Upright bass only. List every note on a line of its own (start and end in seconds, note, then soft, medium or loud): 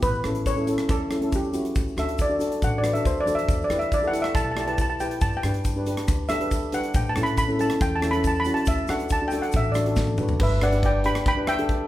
0.03 0.19 A1 medium
0.24 0.74 A1 medium
0.89 1.55 E2 medium
1.76 1.93 D2 medium
1.97 2.47 D2 medium
2.62 2.95 A1 medium
3.05 3.25 D2 medium
3.26 3.46 E2 medium
3.48 3.65 E2 medium
3.69 4.20 E2 medium
4.35 5.01 B1 medium
5.22 5.38 G2 medium
5.43 5.93 G2 medium
6.08 6.74 D2 medium
6.95 7.11 A2 medium
7.17 7.66 A2 medium
7.81 8.47 E2 loud
8.67 8.84 D2 medium
8.89 9.39 D2 medium
9.54 10.20 A1 medium
10.40 11.06 G1 loud
11.26 11.88 D2 medium